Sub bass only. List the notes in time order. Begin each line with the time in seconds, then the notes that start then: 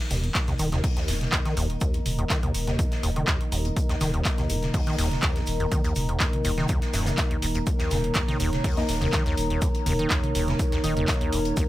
0.11 D#1
0.59 D#1
1.08 D#1
1.57 D#1
2.06 D#1
2.55 D#1
3.03 D#1
3.52 D#1
4.01 D#1
4.50 D#1
4.98 D#1
5.47 D#1
5.96 D#1
6.45 D#1
6.94 D#1
7.42 D#1
7.91 D#1
8.40 D#1
8.89 D#1
9.37 D#1
9.86 D#1
10.35 D#1
10.84 D#1
11.33 D#1